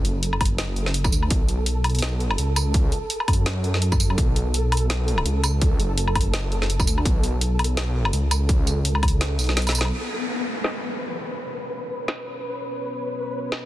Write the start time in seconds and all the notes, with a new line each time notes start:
Already playing: A4
0.05 F#1, closed hi-hat
0.23 closed hi-hat
0.33 low woodblock
0.41 kick, closed hi-hat, low woodblock
0.45 closed hi-hat
0.58 snare, closed hi-hat
0.76 closed hi-hat
0.86 snare
0.94 closed hi-hat
1.04 kick, tambourine, low woodblock
1.12 D2, closed hi-hat, tambourine
1.23 low woodblock
1.30 B1, kick, closed hi-hat
1.48 closed hi-hat
1.66 closed hi-hat
1.84 closed hi-hat, low woodblock
1.90 closed hi-hat
1.95 closed hi-hat
1.99 B1, snare, closed hi-hat
2.02 closed hi-hat
2.20 closed hi-hat
2.31 low woodblock
2.38 C#2, closed hi-hat
2.56 closed hi-hat, tambourine, low woodblock
2.74 kick, closed hi-hat
2.92 closed hi-hat
3.10 closed hi-hat
3.20 low woodblock
3.28 F#2, kick, closed hi-hat, low woodblock
3.33 closed hi-hat
3.46 snare, closed hi-hat
3.64 closed hi-hat
3.74 snare
3.82 closed hi-hat
3.92 kick, tambourine, low woodblock
4.00 closed hi-hat, tambourine
4.10 low woodblock
4.18 B1, kick, closed hi-hat
4.36 closed hi-hat
4.54 closed hi-hat
4.72 closed hi-hat, low woodblock
4.77 closed hi-hat
4.89 B1, snare, closed hi-hat
5.08 closed hi-hat
5.18 low woodblock
5.25 C#2, closed hi-hat
5.44 closed hi-hat, tambourine, low woodblock
5.62 kick, closed hi-hat
5.79 F#1, closed hi-hat
5.98 closed hi-hat
6.08 low woodblock
6.16 kick, closed hi-hat, low woodblock
6.21 closed hi-hat
6.34 snare, closed hi-hat
6.52 closed hi-hat
6.62 snare
6.70 closed hi-hat
6.80 kick, tambourine, low woodblock
6.87 D2, closed hi-hat, tambourine
6.98 low woodblock
7.05 B1, kick, closed hi-hat
7.23 closed hi-hat
7.41 closed hi-hat
7.59 closed hi-hat, low woodblock
7.64 closed hi-hat
7.77 B1, snare, closed hi-hat
8.05 low woodblock
8.13 C#2, closed hi-hat
8.31 closed hi-hat, tambourine, low woodblock
8.49 kick, closed hi-hat
8.67 C#2, closed hi-hat, tambourine
8.85 closed hi-hat
8.95 low woodblock
9.03 kick, closed hi-hat, low woodblock
9.08 closed hi-hat
9.21 snare, closed hi-hat
9.39 B1, closed hi-hat, tambourine
9.41 closed hi-hat
9.44 closed hi-hat
9.47 snare, closed hi-hat
9.57 snare, closed hi-hat
9.62 closed hi-hat
9.67 snare, closed hi-hat, tambourine, low woodblock
9.71 closed hi-hat, low woodblock
9.75 closed hi-hat, tambourine, low woodblock
9.81 snare
9.85 low woodblock
9.93 B3 F#4 B4 C#5, downlifter
10.64 snare
12.08 snare
13.52 snare